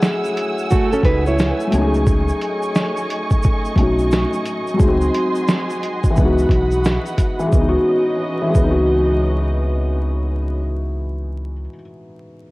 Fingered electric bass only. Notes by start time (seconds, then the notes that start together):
1.03 C#2
1.73 C#2
3.76 B1
4.80 C#2
6.18 C#2
6.49 B1
7.53 C#2
8.55 C#2